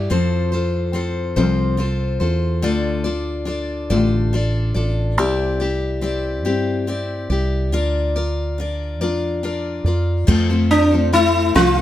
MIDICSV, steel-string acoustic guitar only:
0, 0, Header, 1, 2, 480
1, 0, Start_track
1, 0, Key_signature, -1, "major"
1, 0, Tempo, 847458
1, 60, Time_signature, 6, 3, 24, 8
1, 6692, End_track
2, 0, Start_track
2, 0, Title_t, "Steel-string acoustic guitar"
2, 0, Program_c, 0, 25
2, 0, Note_on_c, 0, 64, 46
2, 56, Note_on_c, 0, 53, 64
2, 59, Note_off_c, 0, 64, 0
2, 60, Note_on_c, 0, 60, 62
2, 61, Note_on_c, 0, 65, 62
2, 64, Note_on_c, 0, 69, 68
2, 65, Note_on_c, 0, 72, 74
2, 287, Note_off_c, 0, 72, 0
2, 293, Note_on_c, 0, 72, 47
2, 296, Note_off_c, 0, 69, 0
2, 298, Note_off_c, 0, 53, 0
2, 299, Note_off_c, 0, 60, 0
2, 300, Note_off_c, 0, 65, 0
2, 303, Note_on_c, 0, 69, 50
2, 308, Note_on_c, 0, 65, 40
2, 527, Note_off_c, 0, 65, 0
2, 527, Note_on_c, 0, 60, 48
2, 531, Note_off_c, 0, 69, 0
2, 533, Note_on_c, 0, 65, 57
2, 534, Note_off_c, 0, 72, 0
2, 537, Note_on_c, 0, 69, 55
2, 541, Note_on_c, 0, 72, 53
2, 764, Note_off_c, 0, 72, 0
2, 767, Note_off_c, 0, 69, 0
2, 770, Note_off_c, 0, 65, 0
2, 771, Note_on_c, 0, 72, 60
2, 773, Note_off_c, 0, 60, 0
2, 774, Note_on_c, 0, 69, 54
2, 777, Note_on_c, 0, 65, 53
2, 779, Note_on_c, 0, 53, 46
2, 780, Note_on_c, 0, 60, 52
2, 997, Note_off_c, 0, 60, 0
2, 1003, Note_off_c, 0, 65, 0
2, 1004, Note_on_c, 0, 60, 50
2, 1007, Note_off_c, 0, 69, 0
2, 1010, Note_on_c, 0, 65, 52
2, 1011, Note_off_c, 0, 72, 0
2, 1014, Note_on_c, 0, 69, 55
2, 1018, Note_on_c, 0, 72, 58
2, 1019, Note_off_c, 0, 53, 0
2, 1239, Note_off_c, 0, 72, 0
2, 1245, Note_off_c, 0, 69, 0
2, 1246, Note_on_c, 0, 72, 45
2, 1251, Note_off_c, 0, 60, 0
2, 1251, Note_on_c, 0, 69, 44
2, 1253, Note_off_c, 0, 65, 0
2, 1259, Note_on_c, 0, 65, 40
2, 1486, Note_off_c, 0, 65, 0
2, 1486, Note_on_c, 0, 50, 68
2, 1487, Note_off_c, 0, 69, 0
2, 1489, Note_on_c, 0, 57, 66
2, 1491, Note_off_c, 0, 72, 0
2, 1491, Note_on_c, 0, 62, 59
2, 1493, Note_on_c, 0, 65, 77
2, 1494, Note_on_c, 0, 69, 72
2, 1494, Note_on_c, 0, 74, 67
2, 1715, Note_off_c, 0, 74, 0
2, 1721, Note_off_c, 0, 69, 0
2, 1722, Note_on_c, 0, 74, 52
2, 1725, Note_off_c, 0, 65, 0
2, 1728, Note_off_c, 0, 62, 0
2, 1728, Note_on_c, 0, 69, 49
2, 1732, Note_off_c, 0, 50, 0
2, 1732, Note_on_c, 0, 65, 46
2, 1734, Note_off_c, 0, 57, 0
2, 1735, Note_on_c, 0, 62, 43
2, 1949, Note_off_c, 0, 62, 0
2, 1956, Note_off_c, 0, 65, 0
2, 1956, Note_on_c, 0, 62, 46
2, 1960, Note_off_c, 0, 69, 0
2, 1962, Note_on_c, 0, 65, 51
2, 1965, Note_off_c, 0, 74, 0
2, 1966, Note_on_c, 0, 69, 49
2, 1972, Note_on_c, 0, 74, 52
2, 2202, Note_off_c, 0, 69, 0
2, 2202, Note_off_c, 0, 74, 0
2, 2208, Note_off_c, 0, 62, 0
2, 2209, Note_off_c, 0, 65, 0
2, 2209, Note_on_c, 0, 69, 62
2, 2209, Note_on_c, 0, 74, 59
2, 2214, Note_on_c, 0, 57, 59
2, 2214, Note_on_c, 0, 62, 50
2, 2216, Note_on_c, 0, 65, 51
2, 2223, Note_on_c, 0, 50, 47
2, 2445, Note_off_c, 0, 62, 0
2, 2450, Note_off_c, 0, 65, 0
2, 2451, Note_off_c, 0, 69, 0
2, 2452, Note_on_c, 0, 62, 52
2, 2454, Note_off_c, 0, 74, 0
2, 2457, Note_off_c, 0, 57, 0
2, 2457, Note_on_c, 0, 65, 51
2, 2458, Note_on_c, 0, 69, 53
2, 2461, Note_off_c, 0, 50, 0
2, 2464, Note_on_c, 0, 74, 55
2, 2680, Note_off_c, 0, 74, 0
2, 2687, Note_on_c, 0, 74, 45
2, 2689, Note_off_c, 0, 69, 0
2, 2692, Note_off_c, 0, 65, 0
2, 2696, Note_off_c, 0, 62, 0
2, 2696, Note_on_c, 0, 69, 44
2, 2698, Note_on_c, 0, 65, 44
2, 2702, Note_on_c, 0, 62, 35
2, 2930, Note_off_c, 0, 62, 0
2, 2931, Note_off_c, 0, 65, 0
2, 2932, Note_on_c, 0, 60, 68
2, 2933, Note_off_c, 0, 74, 0
2, 2934, Note_off_c, 0, 69, 0
2, 2934, Note_on_c, 0, 64, 73
2, 2937, Note_on_c, 0, 67, 79
2, 2939, Note_on_c, 0, 74, 75
2, 3164, Note_off_c, 0, 74, 0
2, 3171, Note_on_c, 0, 74, 47
2, 3172, Note_off_c, 0, 67, 0
2, 3176, Note_off_c, 0, 60, 0
2, 3177, Note_off_c, 0, 64, 0
2, 3179, Note_on_c, 0, 67, 48
2, 3186, Note_on_c, 0, 64, 43
2, 3403, Note_off_c, 0, 64, 0
2, 3405, Note_off_c, 0, 67, 0
2, 3406, Note_on_c, 0, 60, 47
2, 3409, Note_on_c, 0, 64, 52
2, 3412, Note_off_c, 0, 74, 0
2, 3412, Note_on_c, 0, 67, 57
2, 3419, Note_on_c, 0, 74, 61
2, 3645, Note_off_c, 0, 74, 0
2, 3649, Note_off_c, 0, 67, 0
2, 3652, Note_off_c, 0, 64, 0
2, 3652, Note_on_c, 0, 74, 57
2, 3654, Note_off_c, 0, 60, 0
2, 3656, Note_on_c, 0, 67, 61
2, 3658, Note_on_c, 0, 64, 48
2, 3663, Note_on_c, 0, 60, 47
2, 3886, Note_off_c, 0, 60, 0
2, 3890, Note_off_c, 0, 64, 0
2, 3892, Note_on_c, 0, 60, 44
2, 3893, Note_off_c, 0, 67, 0
2, 3897, Note_off_c, 0, 74, 0
2, 3897, Note_on_c, 0, 64, 55
2, 3899, Note_on_c, 0, 67, 58
2, 3904, Note_on_c, 0, 74, 55
2, 4127, Note_off_c, 0, 74, 0
2, 4134, Note_on_c, 0, 74, 44
2, 4137, Note_off_c, 0, 60, 0
2, 4138, Note_off_c, 0, 67, 0
2, 4139, Note_off_c, 0, 64, 0
2, 4145, Note_on_c, 0, 67, 44
2, 4150, Note_on_c, 0, 64, 41
2, 4375, Note_off_c, 0, 74, 0
2, 4375, Note_on_c, 0, 62, 59
2, 4376, Note_off_c, 0, 64, 0
2, 4378, Note_on_c, 0, 65, 68
2, 4380, Note_off_c, 0, 67, 0
2, 4382, Note_on_c, 0, 70, 70
2, 4382, Note_on_c, 0, 74, 81
2, 4614, Note_off_c, 0, 74, 0
2, 4618, Note_off_c, 0, 62, 0
2, 4619, Note_off_c, 0, 70, 0
2, 4620, Note_off_c, 0, 65, 0
2, 4621, Note_on_c, 0, 74, 54
2, 4625, Note_on_c, 0, 70, 48
2, 4632, Note_on_c, 0, 65, 43
2, 4860, Note_on_c, 0, 62, 47
2, 4862, Note_off_c, 0, 74, 0
2, 4863, Note_off_c, 0, 65, 0
2, 4864, Note_off_c, 0, 70, 0
2, 4869, Note_on_c, 0, 65, 51
2, 4870, Note_on_c, 0, 70, 53
2, 4876, Note_on_c, 0, 74, 53
2, 5096, Note_off_c, 0, 74, 0
2, 5099, Note_off_c, 0, 70, 0
2, 5101, Note_off_c, 0, 62, 0
2, 5103, Note_on_c, 0, 74, 62
2, 5106, Note_off_c, 0, 65, 0
2, 5106, Note_on_c, 0, 70, 51
2, 5113, Note_on_c, 0, 65, 49
2, 5116, Note_on_c, 0, 62, 46
2, 5335, Note_off_c, 0, 62, 0
2, 5340, Note_off_c, 0, 65, 0
2, 5341, Note_on_c, 0, 62, 48
2, 5343, Note_off_c, 0, 74, 0
2, 5345, Note_off_c, 0, 70, 0
2, 5347, Note_on_c, 0, 65, 52
2, 5350, Note_on_c, 0, 70, 51
2, 5352, Note_on_c, 0, 74, 54
2, 5577, Note_off_c, 0, 74, 0
2, 5582, Note_off_c, 0, 62, 0
2, 5584, Note_on_c, 0, 74, 42
2, 5585, Note_off_c, 0, 65, 0
2, 5585, Note_off_c, 0, 70, 0
2, 5592, Note_on_c, 0, 70, 43
2, 5595, Note_on_c, 0, 65, 39
2, 5816, Note_on_c, 0, 41, 68
2, 5818, Note_on_c, 0, 53, 75
2, 5820, Note_off_c, 0, 65, 0
2, 5821, Note_on_c, 0, 57, 75
2, 5824, Note_off_c, 0, 70, 0
2, 5824, Note_off_c, 0, 74, 0
2, 5824, Note_on_c, 0, 60, 76
2, 5826, Note_on_c, 0, 65, 81
2, 5826, Note_on_c, 0, 69, 89
2, 5938, Note_off_c, 0, 69, 0
2, 5940, Note_off_c, 0, 41, 0
2, 5941, Note_off_c, 0, 53, 0
2, 5942, Note_off_c, 0, 57, 0
2, 5944, Note_off_c, 0, 60, 0
2, 5944, Note_off_c, 0, 65, 0
2, 5944, Note_on_c, 0, 69, 47
2, 5950, Note_on_c, 0, 65, 46
2, 5953, Note_on_c, 0, 60, 38
2, 5962, Note_on_c, 0, 57, 34
2, 6172, Note_off_c, 0, 69, 0
2, 6179, Note_on_c, 0, 69, 46
2, 6180, Note_off_c, 0, 65, 0
2, 6187, Note_on_c, 0, 65, 46
2, 6188, Note_off_c, 0, 60, 0
2, 6193, Note_off_c, 0, 57, 0
2, 6196, Note_on_c, 0, 60, 42
2, 6199, Note_on_c, 0, 57, 33
2, 6295, Note_off_c, 0, 57, 0
2, 6297, Note_off_c, 0, 60, 0
2, 6301, Note_off_c, 0, 69, 0
2, 6302, Note_on_c, 0, 57, 57
2, 6304, Note_on_c, 0, 60, 55
2, 6305, Note_off_c, 0, 65, 0
2, 6314, Note_on_c, 0, 69, 59
2, 6538, Note_off_c, 0, 57, 0
2, 6539, Note_off_c, 0, 60, 0
2, 6539, Note_on_c, 0, 41, 70
2, 6543, Note_off_c, 0, 69, 0
2, 6545, Note_on_c, 0, 53, 72
2, 6545, Note_on_c, 0, 57, 65
2, 6546, Note_on_c, 0, 60, 74
2, 6548, Note_on_c, 0, 65, 69
2, 6550, Note_on_c, 0, 69, 72
2, 6656, Note_off_c, 0, 69, 0
2, 6662, Note_off_c, 0, 41, 0
2, 6663, Note_on_c, 0, 69, 45
2, 6664, Note_off_c, 0, 65, 0
2, 6665, Note_off_c, 0, 53, 0
2, 6665, Note_off_c, 0, 57, 0
2, 6665, Note_off_c, 0, 60, 0
2, 6671, Note_on_c, 0, 65, 40
2, 6692, Note_off_c, 0, 65, 0
2, 6692, Note_off_c, 0, 69, 0
2, 6692, End_track
0, 0, End_of_file